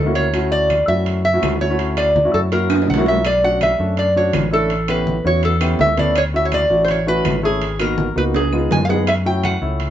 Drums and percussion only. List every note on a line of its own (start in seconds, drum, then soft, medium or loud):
0.15 high timbale medium
0.34 high conga soft
0.34 high timbale medium
0.34 claves medium
0.52 high conga soft
0.70 high conga medium
0.70 high timbale medium
0.70 low timbale soft
0.70 claves medium
0.89 high conga soft
1.06 high conga soft
1.06 high timbale medium
1.25 high conga soft
1.43 high conga medium
1.43 high timbale medium
1.43 low timbale medium
1.43 claves medium
1.61 high conga soft
1.79 high conga soft
1.79 high timbale medium
1.97 high conga soft
1.97 high timbale medium
1.97 claves medium
2.15 high conga medium
2.15 low timbale medium
2.52 high conga soft
2.52 high timbale medium
2.70 high conga soft
2.70 high timbale medium
2.70 claves medium
2.82 low timbale medium
2.88 high conga medium
2.94 low timbale medium
3.06 low timbale medium
3.25 high conga soft
3.25 high timbale medium
3.25 claves medium
3.43 high conga soft
3.61 high conga medium
3.61 high timbale medium
3.61 low timbale medium
3.61 claves medium
3.79 high conga soft
3.97 high conga soft
3.97 high timbale medium
4.16 high conga soft
4.33 high conga medium
4.33 high timbale medium
4.33 low timbale medium
4.33 claves medium
4.52 high conga soft
4.70 high conga soft
4.70 high timbale medium
4.88 high conga soft
4.88 high timbale medium
4.88 claves medium
5.07 high conga medium
5.07 low timbale medium
5.25 high conga soft
5.43 high conga soft
5.43 high timbale medium
5.61 high conga soft
5.61 high timbale medium
5.61 claves medium
5.79 high conga medium
5.79 low timbale medium
5.97 high conga medium
5.97 high timbale medium
6.16 high conga soft
6.16 high timbale medium
6.16 claves medium
6.34 high conga soft
6.52 high conga medium
6.52 high timbale medium
6.52 low timbale medium
6.52 claves medium
6.71 high conga soft
6.88 high conga soft
6.88 high timbale medium
7.07 high conga soft
7.25 high conga medium
7.25 high timbale medium
7.25 low timbale medium
7.25 claves medium
7.44 high conga soft
7.61 high conga soft
7.61 high timbale medium
7.80 high conga soft
7.80 high timbale medium
7.80 claves medium
7.98 high conga medium
7.98 low timbale medium
8.17 high conga soft
8.34 high conga soft
8.34 high timbale medium
8.53 high conga soft
8.53 claves medium
8.71 high conga medium
8.71 low timbale medium
8.89 low timbale medium
9.07 high conga soft
9.07 high timbale medium
9.07 claves medium
9.26 high conga soft
9.44 high conga medium
9.44 high timbale medium
9.44 low timbale medium
9.44 claves medium
9.62 high conga soft
9.80 high conga soft
9.80 high timbale medium